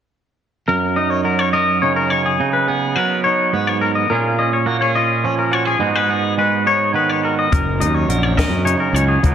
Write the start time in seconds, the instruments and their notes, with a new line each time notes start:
0.68 clean electric guitar F#2 A#4
0.96 clean electric guitar D#4 D#5
1.10 clean electric guitar C#5
1.24 clean electric guitar F#3 A#4
1.39 clean electric guitar C#5
1.53 clean electric guitar A#4 D#5
1.82 clean electric guitar C#3 D#4 C#5
1.96 clean electric guitar A#4
2.10 clean electric guitar C#5
2.26 clean electric guitar G#4
2.40 clean electric guitar C#3 D#4
2.53 clean electric guitar B4
2.68 clean electric guitar B3 G#4
2.96 clean electric guitar F#3 A#4 B4
3.24 clean electric guitar D#4 C#5
3.53 clean electric guitar G#2 B3 B4
3.67 clean electric guitar C#5
3.81 clean electric guitar A#4
3.95 clean electric guitar D#5
4.10 clean electric guitar A#2 A#3 C#4 F4 G#4 A#4
4.39 clean electric guitar C#4 D#5
4.53 clean electric guitar C#5
4.66 clean electric guitar A#3 F#4 A#4
4.81 clean electric guitar G#4 C#5
4.95 clean electric guitar F4 D#5
5.24 clean electric guitar F3 C#4 C#5
5.39 clean electric guitar A#4
5.51 clean electric guitar F#4 C#5
5.65 clean electric guitar G#4
5.79 clean electric guitar G#2 G#3 B3 D#4 F#4
5.96 clean electric guitar B4
6.09 clean electric guitar B3 G#4
6.38 clean electric guitar G#3 F#4 B4
6.66 clean electric guitar D#4 C#5
6.94 clean electric guitar D#3 B3 B4
7.09 clean electric guitar C#5
7.23 clean electric guitar F#4 A#4
7.39 clean electric guitar D#5
7.52 fingered electric bass F#1, clean electric guitar F#2 A#4, kick, closed hi-hat
7.80 fingered electric bass D#2, clean electric guitar D#4 D#5, closed hi-hat
7.95 clean electric guitar C#5
8.08 fingered electric bass A#1, clean electric guitar F#3 A#4, closed hi-hat
8.23 clean electric guitar C#5
8.37 clean electric guitar A#4 D#5, kick, snare, closed hi-hat
8.49 fingered electric bass F#2
8.65 clean electric guitar C#3 D#4 C#5, closed hi-hat
8.80 clean electric guitar A#4
8.93 fingered electric bass C#2, clean electric guitar C#5, closed hi-hat
9.08 clean electric guitar G#4
9.23 fingered electric bass C#2, clean electric guitar C#3 F#3 B3 D#4 A#4, kick, closed hi-hat